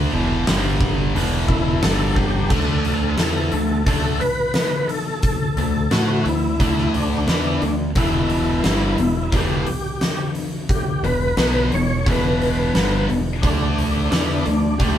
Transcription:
Already playing: picked electric bass D2, distorted electric guitar D3 A3 D4
0.13 picked electric bass E1, distorted electric guitar E2 B2 E3
0.47 picked electric bass G1, distorted electric guitar G2 D3 G3, snare, open hi-hat
0.81 kick
1.15 picked electric bass E1, distorted electric guitar E2 B2 E3, open hi-hat
1.48 tonewheel organ E4, kick
1.83 picked electric bass G1, distorted electric guitar G2 D3 G3, tonewheel organ A4, snare, open hi-hat
2.16 tonewheel organ G4, kick
2.49 picked electric bass D2, distorted electric guitar D3 A3 D4, tonewheel organ A4, kick, crash
2.85 open hi-hat
3.18 picked electric bass E2, distorted electric guitar E3 B3 E4, snare, open hi-hat
3.52 picked electric bass D2, distorted electric guitar D3 A3, open hi-hat
3.86 picked electric bass D2, distorted electric guitar D3 A3 D4, tonewheel organ A4, kick, open hi-hat
4.20 tonewheel organ B4, open hi-hat
4.54 snare, open hi-hat
4.87 tonewheel organ A4, open hi-hat
5.21 tonewheel organ A4, kick, open hi-hat
5.57 picked electric bass D2, distorted electric guitar D3 A3, open hi-hat
5.91 picked electric bass A2, distorted electric guitar A3 E4 A4, tonewheel organ F#4, snare, open hi-hat
6.24 picked electric bass D2, distorted electric guitar D3 A3, tonewheel organ E4, open hi-hat
6.60 picked electric bass D2, distorted electric guitar D3 A3 D4, kick, open hi-hat
6.78 snare
6.93 tonewheel organ D4, open hi-hat
7.28 picked electric bass E2, distorted electric guitar E3 B3 E4, tonewheel organ D4, snare, open hi-hat
7.62 picked electric bass D2, distorted electric guitar D3 A3, open hi-hat
7.95 picked electric bass E1, distorted electric guitar E2 B2 E3, tonewheel organ E4, kick, open hi-hat
8.30 open hi-hat
8.63 picked electric bass G1, distorted electric guitar G2 D3 G3, tonewheel organ E4, snare, open hi-hat
8.98 picked electric bass E1, distorted electric guitar E2 B2, open hi-hat
9.32 picked electric bass E1, distorted electric guitar E2 B2 E3, tonewheel organ G4, kick, open hi-hat
9.67 open hi-hat
10.01 snare, open hi-hat
10.35 open hi-hat
10.69 tonewheel organ G4, kick, open hi-hat
11.03 picked electric bass E1, distorted electric guitar E2 B2, tonewheel organ B4, open hi-hat
11.37 picked electric bass B1, distorted electric guitar B2 F#3 B3, snare, open hi-hat
11.72 picked electric bass E1, distorted electric guitar E2 B2, tonewheel organ C#5, open hi-hat
12.06 picked electric bass E1, distorted electric guitar E2 B2 E3, tonewheel organ B4, kick, open hi-hat
12.42 open hi-hat
12.75 picked electric bass G1, distorted electric guitar G2 D3 G3, snare, open hi-hat
13.09 picked electric bass E1, distorted electric guitar E2 B2, open hi-hat
13.42 picked electric bass D2, distorted electric guitar D3 A3 D4, tonewheel organ D4, kick, open hi-hat
13.78 open hi-hat
14.10 picked electric bass E2, distorted electric guitar E3 B3 E4, tonewheel organ D4, snare, open hi-hat
14.45 picked electric bass D2, distorted electric guitar D3 A3, open hi-hat
14.78 picked electric bass D2, distorted electric guitar D3 A3 D4, tonewheel organ G4, kick, open hi-hat

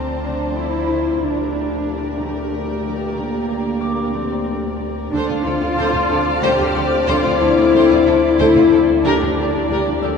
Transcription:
Already playing: sub bass D2, double bass section D2, cello section D3 C4, viola section F3, french horn section F3 C4, violin section C5 D5 A5 A#5, harp G5 F6 G6
0.24 cello section D3 D4
0.56 cello section D3 E4
0.89 cello section D3
1.20 sub bass D2, double bass section D2, french horn section A#2 G4, cello section D3 D4, viola section G4, violin section A#4 D5
1.54 cello section D3
1.87 cello section D3
2.19 cello section D3 A3
2.53 cello section D3
2.85 cello section D3
3.17 cello section D3 A#3
3.50 cello section D3
3.80 cello section D3, harp A#4 D6
4.15 cello section D3 C4
4.47 cello section D3
4.80 cello section D3
5.12 sub bass D2, double bass section D2, cello section D3 D4, french horn section C4 C5, viola section A4, violin section C5 D5 D6 F6
5.29 double bass section D2, violin section F4, viola section A4
5.45 double bass section D2, cello section D3 F4, violin section A4, viola section A4
5.61 double bass section D2, violin section F4, viola section A4
5.77 double bass section D2, cello section D3, viola section A4, violin section C5, harp A5 A6
5.93 double bass section D2, violin section F4, viola section A4
6.10 double bass section D2, cello section D3, violin section A4, viola section A4
6.42 double bass section D2, cello section D3 G4, viola section A4, violin section C5
6.58 double bass section D2, violin section F4, viola section A4
6.75 double bass section D2, cello section D3, violin section A4, viola section A4
7.07 double bass section D2, cello section D3 F4, viola section A4, violin section C5
7.24 double bass section D2, violin section F4, viola section A4
7.41 double bass section D2, cello section D3 E4, violin section A4, viola section A4
7.57 double bass section D2, violin section F4, viola section A4
7.74 double bass section D2, cello section D3, viola section A4, violin section C5
7.90 double bass section D2, violin section F4, viola section A4
8.06 double bass section D2, cello section D3, viola section A4, violin section A4
8.38 double bass section D2, cello section D3 E4, viola section A4, violin section C5
8.55 double bass section D2, violin section F4, viola section A4
8.71 double bass section D2, cello section D3, viola section A4, violin section A4
9.04 double bass section D2, french horn section A#2 G4, cello section D3 D4, viola section G4, violin section A#4 D5
9.20 double bass section D2, violin section D4, viola section G4
9.36 double bass section D2, cello section D3, viola section G4, violin section G4
9.53 double bass section D2, violin section D4, viola section G4
9.69 double bass section D2, cello section D3, viola section G4, violin section A#4
9.86 double bass section D2, violin section D4, viola section G4
10.02 double bass section D2, cello section D3 A3, viola section G4, violin section G4, harp E6

